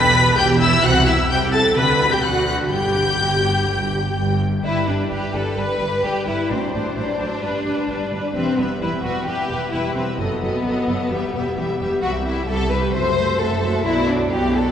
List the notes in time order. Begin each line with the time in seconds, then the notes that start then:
Already playing: E1 E2 B4 B5 B6
0.37 E1 E2 G4 G5 G6
0.60 E4 E5 E6
0.83 C2 C3 F#4 F#5 F#6
1.07 E4 E5 E6
1.29 C2 C3 G4 G5 G6
1.53 A4 A5 A6
1.76 D2 D3 B4 B5 B6
2.11 G4 G5 G6
2.23 D2 D3 F#4 F#5 F#6
2.47 F#4 F#5 F#6
2.71 G1 G2 G4 G5 G6
3.20 G1 G2
3.69 G1 G2
4.17 G1 G2
4.64 G1 G2 G3 E4 B4 D5
4.87 G1 G2 G3 D4 B4 D5
5.10 G1 G2 G3 G4 B4 D5
5.34 G1 G2 G3 A4 B4 D5
5.57 G1 G2 G3 B4 D5
5.80 G1 G2 G3 B4 D5
6.03 G1 G2 G3 G4 B4 D5
6.27 G1 G2 G3 E4 B4 D5
6.50 A1 A2 F#3 D4 C5 D5
6.58 C4
6.65 D4
6.73 A1 A2 F#3 C5 D5
6.96 A1 A2 F#3 C5 D5
7.19 A1 A2 F#3 C5 D5
7.42 G1 G2 G3 B4 D5
7.66 G1 G2 G3 B4 D5
7.89 G1 G2 G3 B4 D5
8.11 G1 G2 G3 B4 D5
8.35 E1 E2 G3 C4 B4 E5
8.57 E1 E2 G3 B3 B4 E5
8.81 E1 E2 G3 E4 B4 E5
9.04 E1 E2 G3 F#4 B4 E5
9.27 E1 E2 G3 G4 B4 E5
9.50 E1 E2 G3 B4 E5
9.73 E1 E2 G3 E4 B4 E5
9.95 E1 E2 G3 C4 B4 E5
10.18 F#1 F#2 F#3 B3 A4 D#5
10.42 F#1 F#2 F#3 A4 D#5
10.65 F#1 F#2 F#3 A4 D#5
10.87 F#1 F#2 F#3 A4 D#5
11.10 E1 E2 G3 G4 E5
11.34 E1 E2 G3 G4 E5
11.57 E1 E2 G3 G4 E5
11.79 E1 E2 G3 G4 E5
12.02 C2 G3 F#4 G4 E5
12.25 G3 E4 G4 E5
12.47 C2 G3 G4 A4 E5
12.71 G3 G4 B4 E5
12.94 F#1 F#2 A3 F#4 C5 E5
13.17 A3 F#4 E5
13.40 F#1 F#2 A3 F#4 A4 E5
13.62 A3 F#4 E5
13.85 B1 B2 F#3 E4 F#4 D5
14.09 F#3 D4 F#4 D5
14.32 B1 B2 F#3 F#4 G4 D5
14.55 F#3 F#4 A4 D5